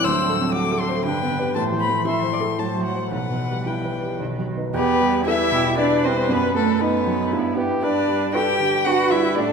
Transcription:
0.04 grand piano D2, cello F#3, viola C5, violin E6
0.22 grand piano A2
0.30 viola A4
0.39 grand piano C4
0.55 grand piano F#4, violin D6
0.72 grand piano A4
0.80 violin C6
0.89 grand piano C5
1.05 grand piano G2, cello D3, viola B4, violin G5
1.22 grand piano B3
1.39 grand piano G4 B4
1.55 grand piano A2, cello E3, viola C5, violin A5
1.72 grand piano E3
1.81 violin B5
1.88 grand piano A3
2.05 grand piano E4, viola E5, violin C6
2.22 grand piano C5
2.33 viola D5
2.40 grand piano A4
2.58 grand piano A2, cello F#3, viola C5, violin A5
2.77 grand piano F#3
2.85 violin F#5
2.94 grand piano F#4 C5
3.11 grand piano B1, cello E3, viola B4, violin F#5
3.30 grand piano B2
3.49 grand piano G3
3.66 grand piano E4, violin G5
3.85 grand piano B4
4.03 grand piano G4
4.20 grand piano B1, cello D#3
4.38 grand piano F#3
4.57 grand piano D#4 B4
4.74 grand piano E2, cello B3, viola G4, violin B4
5.01 grand piano G3
5.26 cello E4, grand piano E4 B4, viola A4, violin E5
5.52 grand piano B2, viola G4
5.78 cello D4, grand piano E4 B4, viola B4, violin D5
6.04 grand piano G3, cello C4, violin C5
6.29 grand piano F#2, cello B3, violin B4
6.54 grand piano A3, cello A3, violin A4
6.80 cello B3, grand piano D#4 D#5, viola D#4, violin B4
7.07 grand piano F#3
7.32 grand piano G2, viola E4
7.56 grand piano E4 B4, viola G4
7.82 grand piano G2, cello D4, viola B4, violin D5
8.08 grand piano G3
8.33 grand piano D4 B4, cello G4, viola A4, violin G5
8.60 grand piano D3, viola G4
8.85 grand piano D4 B4, cello F#4, viola B4, violin F#5
9.11 grand piano G3, cello E4, violin E5
9.35 grand piano A2, cello D4, viola A4, violin D5

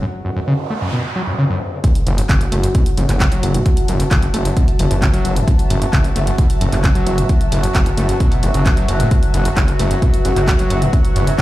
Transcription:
0.02 acid bass F#2, noise sweep
0.25 acid bass F#2
0.36 acid bass F#2
0.48 acid bass C#3
0.70 acid bass A3
0.82 acid bass F#2
0.93 acid bass B2
1.16 acid bass F#3
1.27 acid bass F#2
1.38 acid bass C#3
1.50 acid bass F#2
1.84 acid bass F#2, synth drone F#3 F#4, ambient pad F#4, kick, closed hi-hat
1.95 closed hi-hat
2.02 ambient pad B4
2.07 detuned saw bass F#1, acid bass F#2, open hi-hat
2.18 acid bass F#2, ambient pad E5 A5, closed hi-hat
2.29 detuned saw bass F#1, acid bass C#3, kick, clap, closed hi-hat
2.41 closed hi-hat
2.52 detuned saw bass F#1, acid bass A3, open hi-hat
2.63 acid bass F#2, closed hi-hat
2.75 acid bass B2, kick, closed hi-hat
2.86 closed hi-hat
2.97 detuned saw bass F#1, acid bass F#2, open hi-hat
3.09 detuned saw bass F#1, acid bass F#2, clap, closed hi-hat
3.20 acid bass C#3, kick, clap, closed hi-hat
3.32 acid bass F#3, closed hi-hat
3.43 detuned saw bass F#1, open hi-hat
3.54 acid bass G2, closed hi-hat
3.66 acid bass F#2, kick, closed hi-hat
3.77 closed hi-hat
3.88 detuned saw bass F#1, acid bass F#2, open hi-hat
4.00 acid bass F#2, closed hi-hat
4.11 detuned saw bass F#1, acid bass C#3, kick, clap, closed hi-hat
4.22 closed hi-hat
4.34 detuned saw bass F#1, acid bass A3, open hi-hat
4.45 acid bass F#2, closed hi-hat
4.57 acid bass B2, kick, closed hi-hat
4.68 open hi-hat
4.79 detuned saw bass F#1, acid bass F#2, open hi-hat
4.91 detuned saw bass F#1, acid bass F#2, closed hi-hat
5.02 acid bass C#3, kick, clap, closed hi-hat
5.14 acid bass F#3, closed hi-hat
5.25 detuned saw bass F#1, open hi-hat
5.36 acid bass G2, closed hi-hat
5.48 acid bass F#2, kick, closed hi-hat
5.59 closed hi-hat
5.70 detuned saw bass F#1, acid bass F#2, open hi-hat
5.82 acid bass F#2, closed hi-hat
5.93 detuned saw bass F#1, acid bass C#3, kick, clap, closed hi-hat
6.04 closed hi-hat
6.16 detuned saw bass F#1, acid bass A3, open hi-hat
6.27 acid bass F#2, closed hi-hat
6.38 acid bass B2, kick, closed hi-hat
6.50 closed hi-hat
6.61 detuned saw bass F#1, acid bass F#2, open hi-hat
6.72 detuned saw bass F#1, acid bass F#2, clap, closed hi-hat
6.84 acid bass C#3, kick, clap, closed hi-hat
6.95 acid bass F#3, closed hi-hat
7.07 detuned saw bass F#1, open hi-hat
7.18 acid bass G2, closed hi-hat
7.29 acid bass F#2, kick, closed hi-hat
7.41 closed hi-hat
7.52 detuned saw bass F#1, acid bass F#2, open hi-hat
7.63 acid bass F#2, closed hi-hat
7.75 detuned saw bass F#1, acid bass C#3, kick, clap, closed hi-hat
7.86 closed hi-hat
7.97 detuned saw bass F#1, acid bass A3, open hi-hat
8.09 acid bass F#2, closed hi-hat
8.20 acid bass B2, kick, closed hi-hat
8.32 open hi-hat
8.43 detuned saw bass F#1, acid bass F#2, open hi-hat
8.54 detuned saw bass F#1, acid bass C#3, closed hi-hat
8.66 acid bass F#2, kick, clap, closed hi-hat
8.77 acid bass F#3, closed hi-hat
8.88 detuned saw bass F#1, acid bass F#2, open hi-hat
9.00 acid bass A2, closed hi-hat
9.11 acid bass F#2, kick, closed hi-hat
9.23 closed hi-hat
9.34 detuned saw bass F#1, acid bass F#2, open hi-hat
9.45 acid bass F#2, ambient pad C#6, closed hi-hat
9.57 detuned saw bass F#1, acid bass C#3, kick, clap, closed hi-hat
9.68 closed hi-hat
9.79 detuned saw bass F#1, acid bass A3, open hi-hat
9.91 acid bass F#2, closed hi-hat
10.02 acid bass B2, kick, closed hi-hat
10.14 closed hi-hat
10.25 detuned saw bass F#1, acid bass F#2, open hi-hat
10.36 detuned saw bass F#1, acid bass F#2, clap, closed hi-hat
10.48 acid bass C#3, kick, clap, closed hi-hat
10.59 acid bass F#3, closed hi-hat
10.70 detuned saw bass F#1, open hi-hat
10.82 acid bass G2, closed hi-hat
10.93 acid bass F#2, kick, closed hi-hat
11.05 closed hi-hat
11.16 detuned saw bass F#1, acid bass F#2, open hi-hat
11.27 acid bass F#2, closed hi-hat
11.38 detuned saw bass F#1, acid bass C#3, kick, clap, closed hi-hat

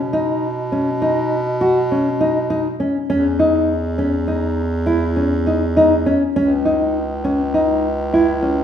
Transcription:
Already playing: bass clarinet B2
0.13 nylon-string guitar D#4
0.72 nylon-string guitar C#4
1.02 nylon-string guitar D#4
1.61 nylon-string guitar F#4
1.92 nylon-string guitar C#4
2.21 nylon-string guitar D#4
2.50 nylon-string guitar D#4
2.80 nylon-string guitar C#4
3.10 bass clarinet E2, nylon-string guitar C#4
3.39 nylon-string guitar D#4
3.98 nylon-string guitar C#4
4.28 nylon-string guitar D#4
4.86 nylon-string guitar E4
5.16 nylon-string guitar C#4
5.47 nylon-string guitar D#4
5.77 nylon-string guitar D#4
6.06 nylon-string guitar C#4
6.36 bass clarinet C#2, nylon-string guitar C#4
6.65 nylon-string guitar D#4
7.24 nylon-string guitar C#4
7.54 nylon-string guitar D#4
8.13 nylon-string guitar E4
8.42 nylon-string guitar C#4

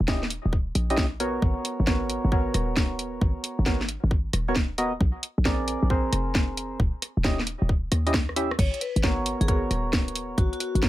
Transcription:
0.00 808-style bass D#1
0.08 synth stab C#4 E4 G4 D#5, kick, snare
0.23 snare
0.30 open hi-hat
0.45 808-style bass D#1
0.53 kick
0.75 808-style bass A#1, open hi-hat
0.90 synth stab C#4 E4 G4 D#5, open hi-hat
0.97 kick, snare
1.20 synth stab B3 F#4 A#4 C#5, open hi-hat
1.42 808-style bass G#1, kick
1.65 open hi-hat
1.80 808-style bass G#1
1.87 synth stab B3 F#4 A#4 C#5, kick, snare
2.10 open hi-hat
2.25 808-style bass G#1
2.32 synth stab B3 F#4 A#4 C#5, kick
2.54 808-style bass D#1, cross-stick, open hi-hat
2.77 kick, snare
2.99 open hi-hat
3.21 808-style bass G#1, kick
3.44 open hi-hat
3.59 808-style bass G#1
3.66 synth stab B3 F#4 A#4 C#5, kick, snare
3.81 snare
3.89 open hi-hat
4.04 808-style bass G#1
4.11 kick
4.33 808-style bass D#1, cross-stick, open hi-hat
4.48 synth stab B3 F#4 A#4 C#5
4.56 kick, snare
4.78 synth stab B3 F#4 A#4 D#5, open hi-hat
5.01 808-style bass A#1, kick
5.23 open hi-hat
5.38 808-style bass A#1
5.45 synth stab C4 G#4 A#4 D5, kick, snare
5.68 open hi-hat
5.83 808-style bass A#1
5.90 synth stab C4 G#4 A#4 C5, kick
6.13 808-style bass F1, cross-stick, open hi-hat
6.35 kick, snare
6.57 open hi-hat
6.80 808-style bass D#1, kick
7.02 cross-stick, open hi-hat
7.17 808-style bass D#1
7.24 synth stab C#4 E4 G4 D#5, kick, snare
7.39 snare
7.47 open hi-hat
7.62 808-style bass D#1
7.69 kick
7.92 808-style bass D#2, cross-stick, open hi-hat
8.06 synth stab C#4 E4 G4 D#5, open hi-hat
8.14 kick, cross-stick, snare
8.29 cross-stick
8.36 synth stab C#4 E4 G4 E5, open hi-hat
8.51 cross-stick
8.59 808-style bass G#1, vibraphone C#5, kick, closed hi-hat, crash
8.74 closed hi-hat
8.81 vibraphone B4, open hi-hat
8.96 808-style bass G#1, closed hi-hat
9.03 synth stab B3 F#4 A#4 C#5, kick, snare
9.26 open hi-hat
9.41 808-style bass G#1, vibraphone G#4, closed hi-hat
9.48 synth stab B3 F#4 A#4 C#5, kick, closed hi-hat
9.71 808-style bass D#1, cross-stick, open hi-hat
9.93 kick, snare
10.08 closed hi-hat
10.15 open hi-hat
10.38 808-style bass G#1, vibraphone F#4, kick, closed hi-hat
10.53 vibraphone F#4, closed hi-hat
10.60 vibraphone F#4, open hi-hat
10.75 808-style bass G#1, vibraphone F#4, closed hi-hat
10.83 synth stab B3 F#4 A#4 C#5, kick, snare

